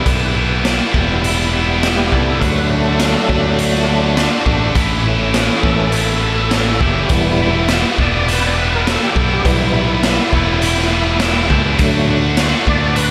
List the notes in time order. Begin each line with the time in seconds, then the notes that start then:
Already playing: B4
0.05 B1 E2 B2 E3 G3 B3 E4, kick, closed hi-hat
0.35 E2 B2 E3 G3 B3 E4
0.63 E2 B2 E3 G3 B3 E4, snare, closed hi-hat
0.92 E1 E2 B2 E3 G3 B3 E4, kick
0.96 E4
1.22 E2 B2 E3 G3 B3 E4, closed hi-hat
1.52 E2 B2 E3 G3 B3 E4
1.81 E2 B2 E3 G3 B3 E4, snare, closed hi-hat
1.85 G4
2.11 C2 E2 B2 E3 G3 B3 E4, kick
2.15 A4
2.39 D2 D3 F#3 A3 D4 F#4 A#4, kick, closed hi-hat
2.43 B4
2.70 D3 A3 D4 F#4
2.77 A4
2.99 D3 A3 D4 F#4, snare, closed hi-hat
3.29 D2 D3 A3 C#4 D4 F#4, kick
3.34 D4
3.59 D3 A3 D4 F#4, closed hi-hat
3.73 snare
3.87 D3 F#3 A3 D4 F#4
4.16 D3 A3 D4 F#4, snare, closed hi-hat
4.46 A1 D3 A3 D4 F#4, kick
4.75 A1 A2 E3 A3 C#4 E4, kick, closed hi-hat
5.05 A2 E3 A3 C#4 E4
5.34 A2 E3 A3 C#4 E4, snare, closed hi-hat
5.59 A2 E3 A3 G#4 A4
5.63 A1 C#4 E4, kick
5.92 A2 E3 A3 C#4 E4, closed hi-hat
6.22 A2 E3 A3 C#4 E4 A4
6.51 A2 E3 A3 C#4 E4, snare, closed hi-hat
6.80 F#1 A2 E3 A3 C#4 E4 G4, kick
7.09 E1 E2 B2 E3 G3 B3 E4, kick, closed hi-hat
7.14 E4
7.40 E2 B2 E3 G3 B3 E4
7.68 E2 B2 E3 G3 B3 E4, snare, closed hi-hat
7.98 E1 E2 B2 E3 G3 B3 E4 D5, kick
8.27 E2 B2 E3 G3 B3 E4, closed hi-hat
8.33 B4
8.46 D5
8.57 E2 B2 E3 G3 B3 E4
8.62 B4
8.75 A#4
8.86 E2 B2 E3 G3 B3 E4 A4, snare, closed hi-hat
9.03 G4
9.15 B1 E2 B2 E3 G3 B3 E4 A4, kick
9.33 G4
9.45 B1 E2 B2 E3 G3 B3 E4, kick, closed hi-hat
9.71 D#4
9.75 E2 B2 E3 G3 B3 E4
10.02 E2 B2 E3 G3 B3 E4, snare, closed hi-hat
10.32 E1 E2 B2 E3 G3 B3 E4, kick
10.62 E2 B2 E3 G3 B3 E4, closed hi-hat
10.77 snare
10.92 E2 B2 E3 G3 B3 E4
11.20 E2 B2 E3 G3 B3 E4, snare, closed hi-hat
11.48 C#2 E2 B2 E3 G3 B3 E4, kick
11.78 D2 D3 F#3 A3 D4 F#4, kick, closed hi-hat
12.09 D3 A3 D4 F#4
12.37 D3 A3 D4 F#4, snare, closed hi-hat
12.67 D2 D3 A3 D4 F#4 D5, kick
12.95 D3 A3 D4 F#4 B4, closed hi-hat